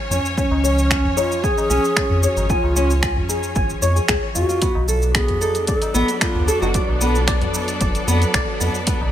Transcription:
Already playing: string section F3 C#4 C#5 G#5
0.10 sub bass F2, nylon-string guitar C#4, tabla tin, tabla ge, shaker
0.25 shaker
0.37 nylon-string guitar C#4, ney C#4, kick, shaker
0.51 sub bass C#2, tabla na
0.64 nylon-string guitar C#5, shaker
0.79 shaker
0.90 nylon-string guitar C#4, finger snap, kick, shaker
1.04 tabla ge
1.17 ney F4, nylon-string guitar C#5, tabla na, shaker
1.30 tabla na, tabla tin, shaker
1.43 ney G#4, nylon-string guitar G#5, kick, shaker
1.58 tabla na, shaker
1.69 sub bass B1, nylon-string guitar C#4, tabla tin, shaker
1.85 shaker
1.96 nylon-string guitar C#4, finger snap, kick, shaker
2.10 sub bass F2, tabla ge
2.23 ney G#4, nylon-string guitar C#5, shaker
2.28 ney F#4
2.37 sub bass G#1, tabla na, shaker
2.49 ney F4, nylon-string guitar G#5, kick, shaker
2.63 sub bass C#2, tabla na
2.76 nylon-string guitar C#4, shaker
2.90 shaker
3.02 nylon-string guitar G#5, finger snap, kick, shaker
3.17 tabla ge
3.29 nylon-string guitar G#4, tabla na, shaker
3.43 tabla tin, shaker
3.55 sub bass G#1, nylon-string guitar G#5, kick, shaker
3.70 shaker
3.82 sub bass F2, nylon-string guitar C#5, tabla tin, shaker
3.96 nylon-string guitar G#4, shaker
4.08 sub bass C#2, nylon-string guitar G#4, finger snap, kick, shaker
4.35 sub bass F2, nylon-string guitar F4, ney F#4, tabla tin, tabla ge, shaker
4.49 nylon-string guitar F4, shaker
4.62 string section F#3, nylon-string guitar B3, kick, closed hi-hat, shaker
4.75 sub bass B1, tabla na
4.88 nylon-string guitar A4, shaker
4.92 string section D4
4.97 string section B3
5.02 shaker
5.14 nylon-string guitar B3, ney G#4, finger snap, kick, closed hi-hat, shaker
5.28 closed hi-hat, tabla ge
5.41 nylon-string guitar A4, tabla na, shaker
5.55 string section A4, closed hi-hat, tabla na, tabla tin, shaker
5.67 ney G#4, nylon-string guitar D5, kick, closed hi-hat, shaker
5.78 ney A4, string section D5, closed hi-hat
5.82 tabla na, shaker
5.94 sub bass A1, nylon-string guitar B3, tabla tin, shaker
6.08 closed hi-hat, shaker
6.21 nylon-string guitar B3, ney F4, finger snap, kick, closed hi-hat, shaker
6.35 sub bass D2, tabla ge
6.48 ney G#4, nylon-string guitar A4, shaker
6.52 ney F#4
6.62 sub bass F#1, nylon-string guitar F#4, tabla na, shaker
6.74 nylon-string guitar D5, kick, closed hi-hat, shaker
6.88 sub bass B1, tabla na
7.01 nylon-string guitar B3, shaker
7.15 shaker
7.27 nylon-string guitar D5, finger snap, kick, closed hi-hat, shaker
7.41 closed hi-hat, tabla ge
7.54 tabla na, shaker
7.68 closed hi-hat, tabla tin, shaker
7.81 sub bass F#1, nylon-string guitar D5, kick, closed hi-hat, shaker
7.95 closed hi-hat, shaker
8.07 sub bass F2, nylon-string guitar B3, tabla tin, shaker
8.22 closed hi-hat, shaker
8.34 sub bass B1, nylon-string guitar D5, finger snap, kick, closed hi-hat, shaker
8.60 sub bass F2, nylon-string guitar B3, tabla tin, tabla ge, shaker
8.75 shaker
8.87 nylon-string guitar B3, kick, closed hi-hat, shaker
9.01 sub bass B1, tabla na

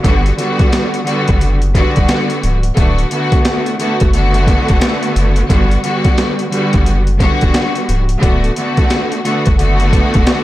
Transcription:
0.03 sub bass G1, string section D3 G3 B3 F#4, kick, closed hi-hat
0.26 closed hi-hat
0.37 string section D3 G3 B3 F#4, closed hi-hat
0.59 kick, closed hi-hat
0.72 snare, closed hi-hat
0.94 closed hi-hat
1.04 string section D3 G3 B3 F#4, closed hi-hat
1.28 sub bass F#1, kick, closed hi-hat
1.41 closed hi-hat
1.62 closed hi-hat
1.75 string section D3 G3 B3 F#4, kick, closed hi-hat
1.96 sub bass E1, kick, closed hi-hat
2.08 snare, closed hi-hat
2.30 closed hi-hat
2.43 sub bass C#1, closed hi-hat
2.63 closed hi-hat
2.75 sub bass D1, string section D3 A3 B3 F#4, kick, closed hi-hat
2.98 closed hi-hat
3.11 string section D3 A3 B3 F#4, closed hi-hat
3.32 kick, closed hi-hat
3.45 snare, closed hi-hat
3.66 closed hi-hat
3.78 string section D3 A3 B3 F#4, closed hi-hat
4.00 sub bass F#1, kick, closed hi-hat
4.12 string section D3 A3 B3 F#4, closed hi-hat
4.34 closed hi-hat
4.47 kick, closed hi-hat
4.68 sub bass E1, kick, closed hi-hat
4.81 snare, closed hi-hat
5.03 closed hi-hat
5.16 sub bass F#1, closed hi-hat
5.36 closed hi-hat
5.48 sub bass G1, string section D3 G3 B3 F#4, kick, closed hi-hat
5.71 closed hi-hat
5.83 string section D3 G3 B3 F#4, closed hi-hat
6.04 kick, closed hi-hat
6.18 snare, closed hi-hat
6.39 closed hi-hat
6.50 string section D3 G3 B3 F#4, closed hi-hat
6.73 sub bass F#1, kick, closed hi-hat
6.86 closed hi-hat
7.07 closed hi-hat
7.20 string section D3 G3 B3 F#4, kick, closed hi-hat
7.41 sub bass E1, kick, closed hi-hat
7.54 snare, closed hi-hat
7.75 closed hi-hat
7.89 sub bass C#1, closed hi-hat
8.09 closed hi-hat
8.20 sub bass D1, string section D3 A3 B3 F#4, kick, closed hi-hat
8.44 closed hi-hat
8.56 string section D3 A3 B3 F#4, closed hi-hat
8.77 kick, closed hi-hat
8.90 snare, closed hi-hat
9.12 closed hi-hat
9.23 string section D3 A3 B3 F#4, closed hi-hat
9.46 sub bass F#1, kick, closed hi-hat
9.57 string section D3 A3 B3 F#4, closed hi-hat
9.80 closed hi-hat
9.93 kick, closed hi-hat
10.14 sub bass E1, kick, closed hi-hat
10.27 snare, closed hi-hat

